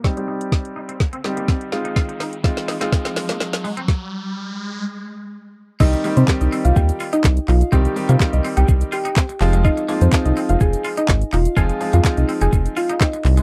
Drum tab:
CC |----------------|----------------|----------------|x---------------|
HH |-x-x-x-x-x-x-x-x|-xox-xox-xox-xox|----------------|-xox-xox-xox-xox|
SH |----------------|----------------|----------------|xxxxxxxxxxxxxxxx|
CP |----------------|----------------|----------------|----x-------x-x-|
SD |o---o---o-o-o-o-|o-o-oooooooooo--|o---------------|----o-------o---|
BD |o---o---o---o---|o---o---o-------|o---------------|o---o---o---o---|

CC |----------------|----------------|----------------|
HH |-xox-xox-xox-xox|-xox-xox-xox-xox|-xox-xox-xox-xox|
SH |xxxxxxxxxxxxxxxx|xxxxxxxxxxxxxxxx|xxxxxxxxxxxxxxxx|
CP |----x-------x-x-|----x-------x-x-|----x-------x-x-|
SD |----o-------o---|----o-------o---|----o-------o---|
BD |o---o---o---o---|o---o---o---o---|o---o---o---o---|